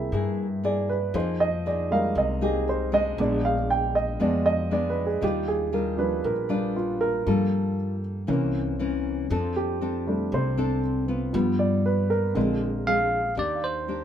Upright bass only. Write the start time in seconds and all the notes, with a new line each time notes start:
0.12 G2
1.14 F2
2.15 C2
3.18 A#1
4.20 F2
5.22 D#2
6.24 A#1
7.27 G2
8.28 C2
9.30 F2
10.32 C2
11.34 G2
12.35 A#1
13.37 D#2